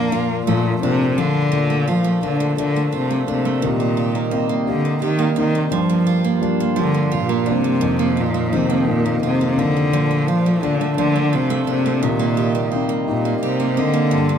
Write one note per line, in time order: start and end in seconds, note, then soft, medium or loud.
0.00 0.11 A#2 medium
0.00 0.47 F3 soft
0.00 0.44 A#3 medium
0.00 0.47 A#3 medium
0.00 0.82 D4 medium
0.00 0.11 F4 medium
0.12 0.81 A#2 medium
0.12 1.17 F4 medium
0.47 0.80 A#2 medium
0.47 1.15 F3 soft
0.47 1.50 A3 medium
0.83 1.50 A#2 soft
0.83 1.21 C3 medium
0.83 1.60 D4 medium
1.17 1.91 D3 medium
1.17 1.51 F3 soft
1.17 1.60 F4 medium
1.51 3.60 A#2 medium
1.51 3.58 A#2 soft
1.51 3.60 F3 soft
1.51 1.69 A3 medium
1.51 3.60 D4 medium
1.70 2.03 A3 soft
1.88 2.24 F3 medium
1.88 2.91 F4 soft
2.04 2.39 A3 soft
2.21 2.56 A3 soft
2.21 2.56 A#3 soft
2.21 2.57 D4 soft
2.21 3.27 D4 soft
2.26 2.57 D3 medium
2.40 2.57 A3 soft
2.57 2.92 D3 medium
2.57 3.25 A3 soft
2.57 2.75 A3 medium
2.57 3.26 A#3 soft
2.57 3.26 D4 soft
2.76 3.09 A3 soft
2.92 3.69 F4 soft
2.97 3.28 C3 medium
3.11 3.44 A3 soft
3.27 3.61 A3 soft
3.27 3.61 A#3 soft
3.27 3.61 D4 soft
3.27 3.70 D4 soft
3.32 3.57 C3 medium
3.45 3.70 A3 soft
3.57 3.68 C3 soft
3.62 4.43 A#2 medium
3.62 5.69 C3 medium
3.62 5.71 C3 medium
3.62 4.67 D#3 medium
3.62 7.78 G3 medium
3.62 9.89 A#3 medium
3.62 5.70 D#5 medium
3.80 4.15 A#3 soft
3.97 5.01 G4 soft
4.15 4.49 A#3 soft
4.31 4.65 A#3 soft
4.31 5.35 C4 soft
4.31 4.66 C4 soft
4.31 5.00 D#5 soft
4.49 4.85 A#3 soft
4.67 5.01 D3 medium
4.67 5.35 A#3 soft
4.67 5.35 C4 soft
4.67 5.35 G4 soft
4.85 5.18 A#3 soft
5.02 5.36 D#3 medium
5.02 5.79 G4 soft
5.19 5.55 A#3 medium
5.36 5.71 D#3 medium
5.36 5.71 A#3 soft
5.36 5.79 C4 soft
5.36 5.71 C4 soft
5.36 5.71 D#4 soft
5.55 5.89 A#3 soft
5.70 7.77 G2 medium
5.70 7.80 G2 medium
5.70 6.76 F3 medium
5.70 6.39 F3 medium
5.70 7.80 F4 medium
5.89 6.24 A#3 soft
6.07 7.11 F4 medium
6.24 6.60 A#3 soft
6.42 6.76 F3 soft
6.42 6.76 G3 soft
6.42 6.77 A#3 soft
6.42 7.45 D4 soft
6.60 6.94 A#3 soft
6.76 7.81 F3 medium
6.76 7.45 F3 soft
6.76 7.45 G3 soft
6.76 7.46 A#3 soft
6.81 7.12 D3 medium
6.94 7.29 A#3 soft
7.12 8.17 F4 medium
7.18 7.53 A#2 medium
7.29 7.64 A#3 medium
7.46 7.81 F3 soft
7.46 7.81 G3 soft
7.46 7.82 A#3 soft
7.46 7.89 D4 soft
7.52 8.22 C3 medium
7.64 7.99 A#3 soft
7.81 9.89 F2 medium
7.81 9.91 F2 medium
7.81 8.87 D#3 medium
7.81 11.99 F3 medium
7.81 9.91 D#5 medium
7.99 8.34 A#3 soft
8.17 8.58 A#2 medium
8.17 9.22 F4 soft
8.34 8.69 A#3 soft
8.52 8.92 C3 medium
8.52 8.85 D#3 soft
8.52 8.85 F3 soft
8.52 8.86 A#3 soft
8.52 9.58 C4 soft
8.70 9.05 A#3 soft
8.86 9.55 D#3 soft
8.86 9.55 F3 soft
8.86 9.55 A#3 soft
8.91 9.23 A#2 medium
9.06 9.41 A#3 soft
9.23 9.60 C3 medium
9.23 10.00 F4 soft
9.41 9.76 A#3 medium
9.57 9.91 C3 soft
9.57 10.30 D3 medium
9.57 9.92 F3 soft
9.57 9.92 A#3 soft
9.57 10.00 C4 soft
9.77 10.10 A#3 soft
9.93 11.99 A#2 medium
9.93 12.01 A#2 medium
9.93 10.97 F3 medium
9.93 12.01 D4 medium
10.11 10.45 A3 soft
10.28 10.66 F3 medium
10.28 11.32 F4 soft
10.46 10.80 A3 soft
10.62 10.98 D3 medium
10.62 10.96 A3 soft
10.62 10.96 A#3 soft
10.62 11.66 D4 soft
10.62 10.96 D4 soft
10.81 11.14 A3 soft
10.97 11.37 D3 medium
10.97 12.02 F3 medium
10.97 11.65 A3 soft
10.97 11.65 A#3 soft
10.97 11.66 D4 soft
11.16 11.49 A3 soft
11.33 11.68 C3 medium
11.33 12.10 F4 medium
11.50 11.85 A3 medium
11.67 12.06 C3 medium
11.67 12.02 A3 soft
11.67 12.02 A#3 soft
11.67 12.09 D4 soft
11.67 12.02 D4 soft
11.86 12.10 A3 soft
11.99 14.08 C3 medium
11.99 13.07 D#3 medium
11.99 14.38 G3 medium
11.99 14.38 A#3 medium
11.99 14.09 D#5 medium
12.03 12.82 A#2 medium
12.03 14.08 C3 medium
12.19 12.54 A#3 soft
12.37 13.41 G4 medium
12.55 12.89 A#3 soft
12.72 13.06 A#3 soft
12.72 13.76 C4 soft
12.72 13.07 C4 soft
12.72 13.07 D#4 soft
12.89 13.25 A#3 soft
13.08 13.41 A#2 medium
13.08 13.75 A#3 soft
13.08 13.76 C4 soft
13.08 13.76 D#4 soft
13.25 13.59 A#3 soft
13.43 13.81 C3 medium
13.43 14.19 G4 medium
13.60 13.93 A#3 medium
13.77 14.38 D3 medium
13.77 14.12 A#3 soft
13.77 14.19 C4 soft
13.77 14.12 C4 soft
13.77 14.12 D#5 soft
13.94 14.29 A#3 soft
14.11 14.38 G2 medium
14.11 14.38 F3 medium
14.11 14.38 F4 medium
14.29 14.38 A#3 soft